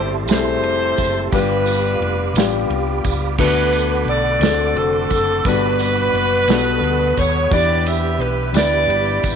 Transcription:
0.00 0.28 G1 medium
0.00 0.25 A2 medium
0.00 0.29 G3 medium
0.00 0.29 A3 medium
0.00 0.15 C4 medium
0.00 0.31 C4 medium
0.00 0.15 E4 medium
0.00 0.30 E4 medium
0.00 0.15 G4 medium
0.00 1.34 G4 medium
0.00 3.35 G4 medium
0.00 0.15 C5 loud
0.00 1.29 E5 medium
0.00 1.30 A5 medium
0.00 1.31 C6 medium
0.28 0.62 B1 medium
0.28 1.03 G3 medium
0.28 1.03 A3 medium
0.28 1.03 C4 medium
0.28 1.03 E4 medium
0.28 1.29 G4 medium
0.28 0.36 G#4 medium
0.28 snare medium
0.28 ride medium
0.28 tambourine medium
0.32 1.29 E4 medium
0.32 1.30 C5 loud
0.37 1.07 A4 medium
0.62 0.94 F1 loud
0.62 ride soft
0.98 1.29 F#1 medium
0.98 kick medium
0.98 ride soft
0.98 tambourine medium
1.31 1.97 G1 loud
1.31 2.32 G2 medium
1.31 2.06 G3 medium
1.31 2.06 B3 medium
1.31 2.06 D4 medium
1.31 2.67 D4 medium
1.31 2.07 F4 medium
1.31 2.67 F4 medium
1.31 2.07 G4 medium
1.31 3.36 F5 medium
1.31 3.37 B5 medium
1.31 3.36 D6 medium
1.31 kick loud
1.31 ride medium
1.31 tambourine soft
1.36 2.72 B4 loud
1.66 ride soft
1.66 tambourine medium
2.00 2.32 F1 medium
2.00 ride soft
2.34 2.66 A1 medium
2.34 3.10 G3 medium
2.34 3.10 B3 medium
2.34 3.10 D4 medium
2.34 ride medium
2.34 tambourine medium
2.38 3.10 F4 medium
2.38 3.11 G4 medium
2.38 snare medium
2.70 3.01 C2 loud
2.70 ride soft
3.04 3.36 C#2 medium
3.04 kick medium
3.04 ride soft
3.04 tambourine medium
3.38 4.03 D2 loud
3.38 4.38 D3 medium
3.38 4.13 A3 medium
3.38 4.12 B3 medium
3.38 4.13 D4 medium
3.38 4.13 F#4 medium
3.38 4.08 F#4 medium
3.38 5.43 A4 medium
3.38 4.13 A4 medium
3.38 4.05 B4 loud
3.38 4.41 F#5 medium
3.38 4.41 B5 medium
3.38 6.46 D6 medium
3.38 kick loud
3.38 crash loud
3.38 tambourine medium
3.72 ride soft
3.72 tambourine medium
4.05 4.38 B1 medium
4.05 4.76 F#4 medium
4.05 4.77 A4 medium
4.05 ride soft
4.09 4.73 D5 loud
4.39 4.72 D2 loud
4.39 5.41 D3 medium
4.39 5.15 A3 medium
4.39 5.15 C4 medium
4.39 5.16 D4 medium
4.39 5.16 F#4 medium
4.39 4.49 G#4 medium
4.39 6.47 F#5 medium
4.39 ride medium
4.39 tambourine medium
4.43 5.45 C6 medium
4.43 snare medium
4.49 5.19 A4 medium
4.74 5.07 F1 loud
4.74 5.42 C4 medium
4.74 5.41 F#4 medium
4.74 5.46 A4 loud
4.74 ride soft
5.10 5.42 F#1 medium
5.10 kick medium
5.10 ride soft
5.10 tambourine soft
5.44 6.10 G1 loud
5.44 6.45 B2 medium
5.44 6.47 G3 medium
5.44 6.20 G3 medium
5.44 6.19 B3 medium
5.44 6.19 D4 medium
5.44 7.14 D4 medium
5.44 6.19 F#4 medium
5.44 7.14 F#4 medium
5.44 5.53 A4 medium
5.44 7.18 B4 loud
5.44 9.36 B5 medium
5.44 kick loud
5.44 ride medium
5.44 tambourine medium
5.54 6.23 B4 medium
5.79 ride medium
5.79 tambourine medium
6.13 6.45 F#1 medium
6.13 ride soft
6.48 6.80 B1 medium
6.48 7.48 B2 medium
6.48 7.22 G3 medium
6.48 7.22 B3 medium
6.48 6.55 D4 medium
6.48 7.22 F#4 medium
6.48 7.51 A4 medium
6.48 7.23 A4 medium
6.48 7.51 F#5 medium
6.48 7.51 D#6 medium
6.48 snare medium
6.48 ride medium
6.48 tambourine medium
6.80 7.13 D2 loud
6.80 ride soft
7.17 7.49 D#2 medium
7.17 7.52 C#5 medium
7.17 kick medium
7.17 ride soft
7.17 tambourine medium
7.51 8.16 E2 loud
7.51 8.51 E3 medium
7.51 8.25 B3 medium
7.51 8.25 D4 medium
7.51 8.26 E4 medium
7.51 9.36 G4 medium
7.51 8.26 G4 medium
7.51 8.51 G4 medium
7.51 8.26 B4 medium
7.51 8.21 B4 medium
7.51 7.85 D5 loud
7.51 9.36 E5 medium
7.51 kick loud
7.51 ride medium
7.51 tambourine medium
7.86 8.21 E5 loud
7.86 ride medium
7.86 tambourine medium
8.19 8.51 B1 medium
8.19 8.55 B4 medium
8.19 ride soft
8.53 8.87 D2 medium
8.53 9.28 B3 medium
8.53 9.28 D4 medium
8.53 9.29 E4 medium
8.53 9.28 G4 medium
8.53 9.36 G4 medium
8.53 9.29 B4 medium
8.53 9.36 B4 medium
8.53 ride medium
8.53 tambourine medium
8.57 9.28 D5 loud
8.57 snare medium
8.86 9.19 G1 loud
8.86 ride soft
9.23 9.36 G#1 medium
9.23 kick medium
9.23 ride soft
9.23 tambourine medium

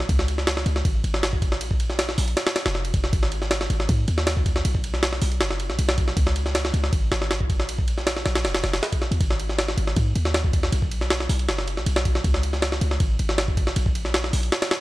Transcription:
0.00 snare soft
0.09 0.65 C#2 loud
0.09 kick loud
0.09 ride medium
0.19 snare medium
0.28 ride medium
0.38 snare soft
0.47 snare loud
0.47 ride medium
0.57 snare medium
0.66 0.83 C#2 loud
0.66 ride medium
0.76 snare soft
0.85 1.02 G#1 loud
0.85 kick loud
0.85 ride medium
1.04 1.62 G#1 medium
1.04 ride medium
1.14 snare medium
1.23 snare loud
1.23 ride medium
1.33 kick loud
1.42 kick medium
1.42 ride medium
1.52 snare medium
1.61 2.16 A#1 medium
1.61 ride medium
1.71 kick loud
1.80 ride medium
1.90 snare soft
1.99 snare loud
1.99 ride medium
2.09 snare soft
2.18 2.35 A#1 loud
2.18 open hi-hat medium
2.28 ride soft
2.37 snare loud
2.37 ride medium
2.47 snare loud
2.47 ride medium
2.56 snare loud
2.56 ride medium
2.66 2.92 F1 loud
2.66 snare loud
2.66 ride medium
2.75 snare medium
2.85 ride medium
2.94 3.11 F1 medium
2.94 kick loud
2.94 ride medium
3.04 snare medium
3.13 3.68 G#1 loud
3.13 kick loud
3.13 ride medium
3.23 snare medium
3.32 ride medium
3.42 snare soft
3.51 snare loud
3.51 ride medium
3.61 snare medium
3.70 3.87 G#1 loud
3.70 ride medium
3.80 snare soft
3.89 4.06 G#2 loud
3.89 kick loud
3.89 ride medium
4.08 4.63 D#2 medium
4.08 ride medium
4.18 snare medium
4.27 snare loud
4.27 ride medium
4.37 kick loud
4.46 kick medium
4.46 ride medium
4.56 snare medium
4.65 5.20 B1 medium
4.65 ride medium
4.75 kick loud
4.84 ride medium
4.94 snare soft
5.03 snare loud
5.03 ride medium
5.13 snare soft
5.22 5.42 B1 loud
5.22 open hi-hat medium
5.32 ride soft
5.41 5.71 F#1 medium
5.41 snare loud
5.41 ride medium
5.51 snare medium
5.60 ride medium
5.70 5.78 B1 medium
5.70 snare soft
5.79 6.15 B1 medium
5.79 ride medium
5.89 snare loud
5.98 kick loud
5.98 ride medium
6.08 snare soft
6.17 6.72 C#2 loud
6.17 kick loud
6.17 ride medium
6.27 snare medium
6.36 ride medium
6.46 snare soft
6.55 snare loud
6.55 ride medium
6.65 snare medium
6.74 6.91 C#2 loud
6.74 ride medium
6.84 snare soft
6.93 7.10 G#1 loud
6.93 kick loud
6.93 ride medium
7.11 7.70 G#1 medium
7.11 snare loud
7.11 ride medium
7.22 snare medium
7.31 snare loud
7.31 ride medium
7.41 kick loud
7.50 kick loud
7.50 ride medium
7.60 snare medium
7.69 8.24 A#1 medium
7.69 ride medium
7.79 kick loud
7.88 ride medium
7.98 snare soft
8.07 snare loud
8.07 ride medium
8.17 snare soft
8.26 8.46 A#1 loud
8.26 snare loud
8.26 ride medium
8.35 snare loud
8.35 ride medium
8.45 8.63 F1 medium
8.45 snare loud
8.45 ride medium
8.55 snare loud
8.55 ride medium
8.64 8.81 F1 loud
8.64 snare loud
8.64 ride medium
8.73 snare loud
8.73 ride medium
8.83 snare loud
8.83 ride medium
8.92 kick loud
8.92 ride medium
9.02 snare medium
9.11 9.20 D#2 loud
9.11 ride medium
9.21 9.76 G#1 loud
9.21 kick loud
9.21 ride medium
9.30 snare medium
9.40 ride medium
9.49 snare soft
9.59 snare loud
9.59 ride medium
9.68 snare medium
9.77 9.95 G#1 loud
9.77 ride medium
9.87 snare soft
9.96 10.14 G#2 loud
9.96 kick loud
9.96 ride medium
10.15 10.71 D#2 medium
10.15 ride medium
10.25 snare medium
10.34 snare loud
10.34 ride medium
10.44 kick loud
10.53 kick medium
10.53 ride medium
10.63 snare medium
10.72 11.28 B1 medium
10.72 ride medium
10.82 kick loud
10.91 ride medium
11.01 snare soft
11.10 snare loud
11.10 ride medium
11.20 snare soft
11.29 11.50 B1 loud
11.29 open hi-hat medium
11.39 ride soft
11.48 11.79 F#1 medium
11.48 snare loud
11.48 ride medium
11.58 snare medium
11.68 ride medium
11.77 11.86 B1 medium
11.77 snare soft
11.86 12.23 B1 medium
11.86 ride medium
11.96 snare loud
12.05 kick loud
12.05 ride medium
12.15 snare medium
12.24 12.80 C#2 loud
12.24 kick loud
12.24 ride medium
12.34 snare medium
12.43 ride medium
12.53 snare soft
12.62 snare loud
12.62 ride medium
12.72 snare medium
12.81 12.99 C#2 loud
12.81 ride medium
12.91 snare soft
13.00 13.17 G#1 loud
13.00 kick loud
13.00 ride medium
13.19 13.75 G#1 medium
13.19 ride medium
13.29 snare medium
13.38 snare loud
13.38 ride medium
13.48 kick loud
13.57 kick loud
13.57 ride medium
13.67 snare medium
13.76 14.32 A#1 medium
13.76 ride medium
13.86 kick loud
13.95 ride medium
14.05 snare soft
14.14 snare loud
14.14 ride medium
14.24 snare soft
14.33 14.50 A#1 loud
14.33 open hi-hat medium
14.43 ride soft
14.52 snare loud
14.52 ride medium
14.62 snare loud
14.62 ride medium
14.71 snare loud
14.71 ride medium

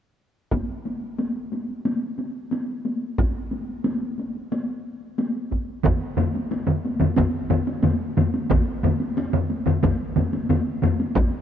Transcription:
0.51 taiko medium
0.51 taiko high soft
0.69 taiko high soft
0.85 taiko high soft
1.02 taiko high soft
1.18 taiko high medium
1.36 taiko high soft
1.52 taiko high soft
1.69 taiko high soft
1.85 taiko high medium
2.02 taiko high soft
2.18 taiko high soft
2.51 taiko high medium
2.68 taiko high soft
2.85 taiko high soft
3.02 taiko high soft
3.18 taiko medium
3.18 taiko high medium
3.51 taiko high soft
3.68 taiko high soft
3.84 taiko high medium
4.01 taiko high soft
4.18 taiko high soft
4.35 taiko high soft
4.52 taiko high medium
4.68 taiko high soft
5.18 taiko high medium
5.35 taiko high soft
5.51 taiko medium
5.51 taiko high soft
5.68 taiko high soft
5.84 taiko medium
5.84 taiko low-mid medium
5.84 taiko mid loud
5.84 taiko high medium
6.17 taiko low-mid medium
6.17 taiko mid medium
6.17 taiko high medium
6.34 taiko high soft
6.51 taiko high medium
6.67 taiko low-mid medium
6.67 taiko mid loud
6.85 taiko high soft
7.00 taiko low-mid medium
7.00 taiko mid loud
7.00 taiko high medium
7.17 taiko medium
7.17 taiko low-mid loud
7.17 taiko mid medium
7.17 taiko high medium
7.50 taiko low-mid medium
7.50 taiko mid loud
7.50 taiko high medium
7.67 taiko high medium
7.83 taiko low-mid medium
7.83 taiko mid medium
7.83 taiko high medium
8.17 taiko low-mid loud
8.17 taiko mid medium
8.17 taiko high medium
8.34 taiko high medium
8.50 taiko loud
8.50 taiko low-mid loud
8.50 taiko mid medium
8.50 taiko high medium
8.83 taiko low-mid medium
8.83 taiko mid medium
8.83 taiko high medium
9.00 taiko high medium
9.17 taiko high medium
9.33 taiko low-mid medium
9.33 taiko mid loud
9.50 taiko high medium
9.66 taiko low-mid medium
9.66 taiko mid medium
9.83 taiko medium
9.83 taiko low-mid loud
9.83 taiko mid medium
9.83 taiko high medium
10.16 taiko low-mid medium
10.16 taiko mid loud
10.16 taiko high medium
10.33 taiko high medium
10.49 taiko low-mid loud
10.49 taiko mid medium
10.49 taiko high medium
10.82 taiko low-mid loud
10.82 taiko mid medium
10.82 taiko high medium
11.00 taiko high medium
11.16 taiko loud
11.16 taiko high medium

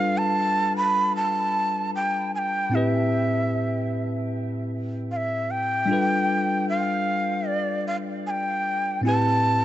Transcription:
0.00 2.67 G3 medium
0.00 2.68 D4 medium
0.00 2.69 F4 medium
0.00 2.70 A4 medium
0.00 2.74 B4 medium
0.00 0.19 F5 loud
0.18 0.76 A5 loud
0.77 1.13 B5 loud
1.16 1.91 A5 loud
1.95 2.32 G5 loud
2.35 2.76 G5 loud
2.35 2.39 G#5 medium
2.70 5.83 A2 medium
2.70 5.84 C4 medium
2.70 5.85 E4 medium
2.75 5.86 G4 medium
2.75 5.87 B4 medium
2.75 4.32 E5 medium
5.11 5.17 F5 medium
5.16 5.52 E5 medium
5.51 6.69 G5 loud
5.86 8.99 G3 medium
5.86 9.00 D4 medium
5.86 9.01 F4 medium
5.91 9.02 A4 medium
5.91 9.03 B4 medium
6.69 7.49 F5 loud
7.48 7.87 D5 medium
7.87 7.96 F5 loud
8.27 9.01 G5 loud
8.27 8.31 G#5 medium
9.01 9.65 A2 medium
9.01 9.65 C4 medium
9.01 9.65 E4 medium
9.06 9.65 G4 medium
9.06 9.65 B4 medium
9.06 9.65 A5 loud

